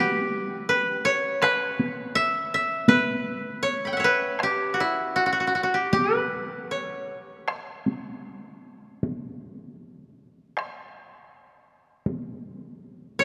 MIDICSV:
0, 0, Header, 1, 3, 480
1, 0, Start_track
1, 0, Tempo, 737101
1, 919, Time_signature, 4, 2, 24, 8
1, 2366, Tempo, 770218
1, 6686, Tempo, 742574
1, 8416, End_track
2, 0, Start_track
2, 0, Title_t, "Koto"
2, 0, Program_c, 0, 107
2, 0, Note_on_c, 0, 64, 90
2, 0, Note_on_c, 0, 67, 99
2, 0, Note_on_c, 0, 71, 65
2, 447, Note_off_c, 0, 71, 0
2, 449, Note_on_c, 0, 71, 99
2, 683, Note_on_c, 0, 73, 106
2, 924, Note_off_c, 0, 71, 0
2, 926, Note_on_c, 0, 71, 109
2, 984, Note_off_c, 0, 64, 0
2, 1312, Note_off_c, 0, 67, 0
2, 1402, Note_on_c, 0, 76, 119
2, 1652, Note_off_c, 0, 76, 0
2, 1655, Note_on_c, 0, 76, 99
2, 1762, Note_off_c, 0, 73, 0
2, 1876, Note_off_c, 0, 71, 0
2, 1879, Note_on_c, 0, 71, 105
2, 2361, Note_on_c, 0, 73, 97
2, 2501, Note_on_c, 0, 83, 45
2, 2513, Note_on_c, 0, 79, 51
2, 2549, Note_on_c, 0, 78, 51
2, 2572, Note_off_c, 0, 76, 0
2, 2575, Note_on_c, 0, 76, 59
2, 2590, Note_off_c, 0, 73, 0
2, 2592, Note_on_c, 0, 73, 64
2, 2619, Note_off_c, 0, 71, 0
2, 2621, Note_on_c, 0, 71, 98
2, 2864, Note_on_c, 0, 67, 88
2, 2901, Note_off_c, 0, 78, 0
2, 3055, Note_on_c, 0, 66, 61
2, 3092, Note_off_c, 0, 67, 0
2, 3092, Note_off_c, 0, 79, 0
2, 3095, Note_on_c, 0, 64, 78
2, 3231, Note_off_c, 0, 83, 0
2, 3314, Note_off_c, 0, 66, 0
2, 3316, Note_on_c, 0, 66, 88
2, 3378, Note_off_c, 0, 66, 0
2, 3380, Note_on_c, 0, 66, 65
2, 3418, Note_off_c, 0, 66, 0
2, 3420, Note_on_c, 0, 66, 71
2, 3465, Note_off_c, 0, 66, 0
2, 3468, Note_on_c, 0, 66, 57
2, 3505, Note_off_c, 0, 76, 0
2, 3509, Note_off_c, 0, 66, 0
2, 3512, Note_on_c, 0, 66, 65
2, 3558, Note_off_c, 0, 66, 0
2, 3560, Note_on_c, 0, 66, 60
2, 3610, Note_off_c, 0, 66, 0
2, 3612, Note_on_c, 0, 66, 70
2, 3625, Note_off_c, 0, 73, 0
2, 3679, Note_on_c, 0, 67, 68
2, 3716, Note_off_c, 0, 66, 0
2, 3728, Note_off_c, 0, 71, 0
2, 3796, Note_off_c, 0, 67, 0
2, 3796, Note_on_c, 0, 67, 89
2, 3945, Note_off_c, 0, 67, 0
2, 3945, Note_on_c, 0, 71, 89
2, 4284, Note_on_c, 0, 73, 70
2, 4506, Note_off_c, 0, 64, 0
2, 4902, Note_off_c, 0, 71, 0
2, 5317, Note_off_c, 0, 73, 0
2, 8384, Note_on_c, 0, 73, 105
2, 8416, Note_off_c, 0, 73, 0
2, 8416, End_track
3, 0, Start_track
3, 0, Title_t, "Taiko and cinematic ensemble drums"
3, 929, Note_on_c, 9, 37, 66
3, 994, Note_off_c, 9, 37, 0
3, 1169, Note_on_c, 9, 48, 44
3, 1234, Note_off_c, 9, 48, 0
3, 1875, Note_on_c, 9, 48, 58
3, 1941, Note_off_c, 9, 48, 0
3, 2837, Note_on_c, 9, 37, 62
3, 2900, Note_off_c, 9, 37, 0
3, 3798, Note_on_c, 9, 48, 63
3, 3860, Note_off_c, 9, 48, 0
3, 4761, Note_on_c, 9, 37, 67
3, 4823, Note_off_c, 9, 37, 0
3, 5002, Note_on_c, 9, 48, 45
3, 5064, Note_off_c, 9, 48, 0
3, 5729, Note_on_c, 9, 48, 62
3, 5792, Note_off_c, 9, 48, 0
3, 6688, Note_on_c, 9, 37, 65
3, 6752, Note_off_c, 9, 37, 0
3, 7654, Note_on_c, 9, 48, 62
3, 7719, Note_off_c, 9, 48, 0
3, 8416, End_track
0, 0, End_of_file